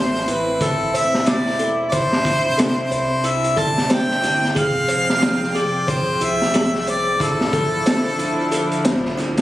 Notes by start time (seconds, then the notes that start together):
Already playing: A1 A3 C4 E4 C5
0.15 snare
0.28 A1 E4 B4, closed hi-hat
0.61 A4, kick, closed hi-hat
0.93 E1 C5 E5, closed hi-hat
1.15 snare
1.26 E4 D5, snare, closed hi-hat
1.47 snare
1.59 A4, closed hi-hat
1.88 C3 C4 D4 D5
1.92 C5, kick, closed hi-hat
2.13 snare
2.25 E4, kick, closed hi-hat
2.58 A4, snare, closed hi-hat
2.91 C2 C5, closed hi-hat
3.24 E4 E5, closed hi-hat
3.44 closed hi-hat
3.56 G1 A4 A5, kick, closed hi-hat
3.78 snare
3.90 C5 G5, snare, closed hi-hat
4.11 snare
4.22 G1 E4, snare, closed hi-hat
4.45 snare
4.55 F1 F3 G#4 F5 G5, kick, closed hi-hat
4.88 C5, closed hi-hat
5.10 snare
5.21 E4, snare, closed hi-hat
5.43 snare
5.55 F1 G#4 D5, closed hi-hat
5.88 C5, kick, closed hi-hat
6.21 C2 E4 E5, closed hi-hat
6.42 snare
6.54 G#4, snare, closed hi-hat
6.75 snare
6.87 C5 D5, closed hi-hat
7.20 D3 F3 D4 E4 A4, kick, closed hi-hat
7.41 snare
7.53 A4, kick, closed hi-hat
7.86 C5, snare, closed hi-hat
8.19 D1 E4, closed hi-hat
8.51 A4, closed hi-hat
8.72 closed hi-hat
8.85 A1 C5, snare, closed hi-hat
9.05 C2, snare
9.18 E4, snare, closed hi-hat
9.37 snare, closed hi-hat